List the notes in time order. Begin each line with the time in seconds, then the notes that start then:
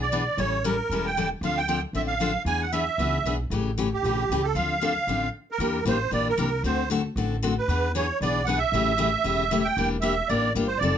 Already playing: B1
0.01 D5
0.12 E3 B3 D4 G#4
0.37 A1 E3 G3 C#4 E4 A4 C#5
0.64 E3 G3 C#4 E4 A4 A#4
0.90 E1 E3 G3 C#4 E4 A4
1.06 G5
1.17 E3 G3 C#4 E4 A4
1.41 D2 D3 F3 C4 D4 A4 F5
1.58 G5
1.68 D3 F3 C4 D4 A4
1.93 A1 D3 F3 C4 D4 A4 E5
2.08 F5
2.20 D3 F3 C4 D4 A4
2.45 E2 E3 B3 D4 G#4 G#5
2.62 F#5
2.72 E3 B3 D4 G#4 E5
2.98 C#2 E3 B3 D4 G#4
3.24 B1 E3 B3 D4 G#4
3.50 A1 C#3 E3 A3 C#4 G4
3.78 C#3 E3 A3 C#4 G4
3.93 G4
4.03 A#1 C#3 E3 A3 C#4 G4
4.29 C#2 C#3 E3 A3 C#4 G4
4.43 A4
4.55 D2 D3 F3 C4 D4 A4 F5
4.82 D3 F3 C4 D4 A4
5.07 A1 D3 F3 C4 D4 A4
5.51 A#4
5.58 E2 E3 A#3 D4 G4
5.85 A1 E3 A#3 D4 G4 C5
6.11 A#1 E3 A#3 D4 G4 D5
6.29 A#4
6.38 C2 E3 A#3 D4 G4
6.63 D2 D3 A3 C4 F#4 A4 C5
6.90 D3 A3 C4 F#4 A4
7.16 A1 D3 A3 C4 F#4 A4
7.43 D3 A3 C4 F#4 A4
7.58 B4
7.68 E2 E3 B3 D4 G#4
7.95 E3 B3 D4 G#4 C#5
8.21 B1 E3 B3 D4 G#4 D5
8.45 E3 B3 F#5
8.49 D4 G#4
8.58 E5
8.72 A1 C#3 E3 A3 C#4 G4
8.98 C#3 E3 A3 C#4 G4
9.24 E1 C#3 E3 A3 C#4 G4
9.51 C#3 E3 A3 C#4 G4
9.64 G5
9.77 E1 E3 A#3 D4 G4
10.01 E3 A#3 D4 G4 E5
10.28 A1 E3 A#3 D4 G4 D5
10.55 G1 E3 A#3 D4 G4
10.67 C5
10.78 F1 D5
10.82 F3 C4 D#4 A4